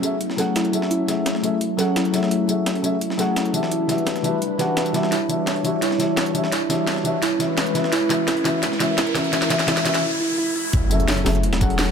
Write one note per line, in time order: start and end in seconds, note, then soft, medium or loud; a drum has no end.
0.00 3.68 F#3 medium
0.00 0.13 F#3 medium
0.00 3.68 A3 medium
0.00 3.68 C#4 medium
0.00 0.13 C#4 medium
0.00 9.99 E4 medium
0.00 0.14 G#4 medium
0.00 0.14 A4 medium
0.00 closed hi-hat medium
0.00 tambourine medium
0.05 0.14 E5 medium
0.21 closed hi-hat medium
0.30 snare soft
0.37 0.70 F#3 medium
0.37 0.71 C#4 medium
0.37 0.71 G#4 medium
0.37 0.54 A4 loud
0.37 0.72 A4 medium
0.37 0.72 F#5 loud
0.37 snare soft
0.37 closed hi-hat medium
0.37 tambourine medium
0.56 0.72 E4 medium
0.56 snare loud
0.56 closed hi-hat medium
0.65 closed hi-hat soft
0.72 1.05 F#3 medium
0.72 1.06 C#4 medium
0.72 1.06 G#4 medium
0.72 1.07 A4 medium
0.72 1.07 E5 medium
0.72 closed hi-hat medium
0.72 tambourine medium
0.82 snare medium
0.91 1.07 E4 medium
0.91 closed hi-hat medium
1.07 1.40 F#3 medium
1.07 1.41 C#4 medium
1.07 1.41 G#4 medium
1.07 1.42 A4 medium
1.07 1.42 E5 medium
1.07 snare soft
1.07 closed hi-hat medium
1.07 tambourine medium
1.26 snare loud
1.26 closed hi-hat medium
1.35 snare soft
1.42 1.53 F#3 medium
1.42 1.54 C#4 medium
1.42 1.54 G#4 medium
1.42 1.54 A4 medium
1.42 1.55 E5 medium
1.42 closed hi-hat medium
1.42 tambourine medium
1.61 closed hi-hat medium
1.77 2.11 F#3 medium
1.77 2.11 C#4 medium
1.77 2.12 G#4 medium
1.77 1.94 A4 loud
1.77 2.12 A4 medium
1.77 2.12 F#5 loud
1.77 snare soft
1.77 closed hi-hat medium
1.77 tambourine medium
1.96 2.13 E4 medium
1.96 snare loud
1.96 closed hi-hat medium
2.05 closed hi-hat soft
2.12 2.46 F#3 medium
2.12 2.46 C#4 medium
2.12 2.47 G#4 medium
2.12 2.47 A4 medium
2.12 2.47 E5 medium
2.12 snare soft
2.12 closed hi-hat medium
2.12 tambourine medium
2.23 snare medium
2.31 2.48 E4 medium
2.31 closed hi-hat medium
2.47 2.81 F#3 medium
2.47 2.81 C#4 medium
2.47 2.82 G#4 medium
2.47 2.82 A4 medium
2.47 2.83 E5 medium
2.47 closed hi-hat medium
2.47 tambourine medium
2.66 snare loud
2.66 closed hi-hat medium
2.75 closed hi-hat soft
2.82 2.93 F#3 medium
2.82 2.94 C#4 medium
2.82 2.94 G#4 medium
2.82 2.95 A4 medium
2.82 2.95 E5 medium
2.82 closed hi-hat medium
2.82 tambourine medium
3.01 closed hi-hat medium
3.10 snare soft
3.17 3.51 F#3 loud
3.17 3.52 C#4 medium
3.17 3.52 G#4 medium
3.17 3.35 A4 loud
3.17 3.52 A4 medium
3.17 3.53 F#5 loud
3.17 snare soft
3.17 closed hi-hat medium
3.17 tambourine medium
3.36 3.53 E4 medium
3.36 snare loud
3.36 closed hi-hat medium
3.36 closed hi-hat loud
3.45 closed hi-hat soft
3.52 3.86 E3 medium
3.52 3.87 D4 medium
3.52 3.87 F#4 medium
3.52 3.87 G4 medium
3.52 3.88 E5 medium
3.52 closed hi-hat medium
3.52 tambourine medium
3.63 snare medium
3.71 7.19 G3 medium
3.71 7.19 D4 medium
3.71 3.88 E4 medium
3.71 5.11 B4 medium
3.71 closed hi-hat medium
3.87 4.21 E3 medium
3.87 4.22 D4 medium
3.87 4.22 F#4 medium
3.87 4.22 G4 medium
3.87 4.23 E5 medium
3.87 snare soft
3.87 closed hi-hat medium
3.87 tambourine medium
3.98 closed hi-hat soft
4.07 snare loud
4.07 closed hi-hat medium
4.16 snare soft
4.16 closed hi-hat soft
4.22 4.34 E3 medium
4.22 4.34 D4 medium
4.22 4.35 F#4 medium
4.22 4.35 G4 medium
4.22 4.35 E5 medium
4.22 closed hi-hat medium
4.22 tambourine medium
4.42 closed hi-hat medium
4.58 4.91 E3 medium
4.58 4.92 D4 medium
4.58 4.92 F#4 medium
4.58 4.93 G4 medium
4.58 4.75 B4 medium
4.58 4.93 F#5 loud
4.58 snare soft
4.58 closed hi-hat medium
4.58 tambourine medium
4.77 4.93 E5 medium
4.77 snare loud
4.77 closed hi-hat medium
4.86 closed hi-hat soft
4.86 tambourine soft
4.93 5.11 E3 medium
4.93 5.12 D4 medium
4.93 5.12 F#4 medium
4.93 5.12 G4 medium
4.93 5.13 E5 medium
4.93 snare soft
4.93 closed hi-hat medium
4.93 tambourine medium
5.03 snare medium
5.12 5.29 E4 medium
5.12 7.20 C#5 medium
5.12 snare medium
5.12 closed hi-hat medium
5.12 riser medium
5.28 5.62 E3 medium
5.28 5.62 D4 medium
5.28 5.62 F#4 medium
5.28 5.63 G4 medium
5.28 5.63 E5 medium
5.28 closed hi-hat medium
5.28 tambourine medium
5.47 snare soft
5.47 snare loud
5.47 closed hi-hat medium
5.56 closed hi-hat soft
5.63 5.74 E3 medium
5.63 5.75 D4 medium
5.63 5.75 F#4 medium
5.63 5.75 G4 medium
5.63 5.76 E5 medium
5.63 closed hi-hat medium
5.63 tambourine medium
5.82 5.99 E4 medium
5.82 snare soft
5.82 closed hi-hat medium
5.91 snare soft
5.98 6.32 E3 medium
5.98 6.32 D4 medium
5.98 6.33 F#4 medium
5.98 6.33 G4 medium
5.98 6.33 E5 medium
5.98 snare soft
5.98 closed hi-hat medium
5.98 tambourine medium
6.17 snare loud
6.17 snare medium
6.17 closed hi-hat medium
6.26 closed hi-hat soft
6.33 6.44 E3 medium
6.33 6.45 D4 medium
6.33 6.45 F#4 medium
6.33 6.46 G4 medium
6.33 6.46 E5 medium
6.33 closed hi-hat medium
6.33 tambourine medium
6.44 snare medium
6.52 6.69 E4 medium
6.52 snare medium
6.52 closed hi-hat medium
6.68 7.02 E3 medium
6.68 7.03 D4 medium
6.68 7.03 F#4 medium
6.68 7.03 G4 medium
6.68 7.04 E5 medium
6.68 snare medium
6.68 closed hi-hat medium
6.68 tambourine medium
6.87 snare loud
6.87 snare medium
6.87 closed hi-hat medium
6.96 snare soft
7.03 7.15 E3 medium
7.03 7.15 D4 medium
7.03 7.15 F#4 medium
7.03 7.16 G4 medium
7.03 7.16 E5 medium
7.03 closed hi-hat medium
7.03 tambourine medium
7.22 10.00 G#3 medium
7.22 10.00 C#4 medium
7.22 7.39 E4 medium
7.22 8.62 B4 medium
7.22 snare medium
7.22 closed hi-hat medium
7.38 7.72 E3 medium
7.38 7.73 C#4 medium
7.38 7.73 F#4 medium
7.38 7.74 E5 medium
7.38 snare soft
7.38 closed hi-hat medium
7.38 tambourine medium
7.57 snare medium
7.57 snare loud
7.57 closed hi-hat medium
7.66 closed hi-hat soft
7.74 7.85 E3 medium
7.74 7.85 C#4 medium
7.74 7.86 F#4 medium
7.74 7.86 E5 medium
7.74 snare soft
7.74 closed hi-hat medium
7.74 tambourine medium
7.84 snare medium
7.92 8.09 E4 medium
7.92 snare medium
7.92 closed hi-hat medium
8.09 8.26 E3 medium
8.09 8.26 C#4 medium
8.09 8.26 F#4 medium
8.09 8.27 E5 medium
8.09 snare medium
8.09 closed hi-hat medium
8.09 tambourine medium
8.28 8.44 E4 medium
8.28 snare medium
8.28 snare loud
8.28 closed hi-hat medium
8.37 closed hi-hat soft
8.44 8.61 E3 medium
8.44 8.61 C#4 medium
8.44 8.61 F#4 medium
8.44 8.62 E5 medium
8.44 snare medium
8.44 closed hi-hat medium
8.44 tambourine medium
8.63 8.79 E4 medium
8.63 10.02 A#4 medium
8.63 snare medium
8.63 closed hi-hat medium
8.72 snare soft
8.79 8.96 E3 medium
8.79 8.96 C#4 medium
8.79 8.97 F#4 medium
8.79 8.97 E5 medium
8.79 snare medium
8.79 closed hi-hat medium
8.79 tambourine medium
8.98 9.15 E4 medium
8.98 snare medium
8.98 snare loud
8.98 closed hi-hat medium
9.07 closed hi-hat soft
9.14 9.30 E3 medium
9.14 9.31 C#4 medium
9.14 9.31 F#4 medium
9.14 9.32 E5 medium
9.14 snare medium
9.14 snare loud
9.14 closed hi-hat medium
9.14 tambourine medium
9.24 closed hi-hat soft
9.31 9.47 E3 medium
9.31 9.48 C#4 medium
9.31 9.49 E4 medium
9.31 9.49 F#4 medium
9.31 9.50 E5 medium
9.31 snare medium
9.31 closed hi-hat loud
9.31 closed hi-hat medium
9.42 snare medium
9.49 9.65 E3 medium
9.49 9.66 C#4 medium
9.49 9.67 E4 medium
9.49 9.66 F#4 medium
9.49 9.67 E5 medium
9.49 snare medium
9.49 closed hi-hat medium
9.49 tambourine medium
9.59 snare medium
9.59 snare soft
9.66 9.83 E3 medium
9.66 9.83 C#4 medium
9.66 9.84 E4 medium
9.66 9.84 F#4 medium
9.66 9.85 E5 medium
9.66 snare medium
9.66 snare loud
9.66 closed hi-hat medium
9.77 snare medium
9.77 snare soft
9.77 closed hi-hat soft
9.84 10.01 E3 medium
9.84 10.01 C#4 medium
9.84 10.02 E4 medium
9.84 10.02 F#4 medium
9.84 10.03 E5 medium
9.84 snare medium
9.84 closed hi-hat medium
9.84 tambourine medium
9.94 snare medium
9.94 closed hi-hat soft
10.03 10.19 E4 medium
10.21 10.37 E4 medium
10.38 10.54 E4 medium
10.56 10.72 E4 medium
10.73 11.25 F#1 loud
10.73 11.91 F#3 medium
10.73 11.91 A3 medium
10.73 11.91 C#4 medium
10.73 11.91 E4 medium
10.73 kick loud
10.73 closed hi-hat loud
10.73 closed hi-hat medium
10.73 impact medium
10.89 11.23 F#3 medium
10.89 11.24 C#4 medium
10.89 11.24 G#4 medium
10.89 11.24 A4 medium
10.89 11.25 E5 medium
10.89 closed hi-hat medium
10.89 tambourine medium
11.00 closed hi-hat soft
11.08 snare loud
11.08 closed hi-hat medium
11.17 closed hi-hat soft
11.24 11.45 F#1 loud
11.24 11.36 F#3 medium
11.24 11.36 C#4 medium
11.24 11.36 G#4 medium
11.24 11.37 A4 medium
11.24 11.37 E5 medium
11.24 snare loud
11.24 closed hi-hat medium
11.24 open hi-hat medium
11.24 tambourine medium
11.35 closed hi-hat soft
11.43 11.91 E1 medium
11.43 closed hi-hat medium
11.53 snare loud
11.53 closed hi-hat medium
11.60 11.91 F#3 medium
11.60 11.91 C#4 medium
11.60 11.91 G#4 medium
11.60 11.91 A4 medium
11.60 11.91 F#5 loud
11.60 kick loud
11.60 closed hi-hat medium
11.60 tambourine medium
11.70 closed hi-hat medium
11.79 snare loud
11.79 closed hi-hat loud
11.79 closed hi-hat medium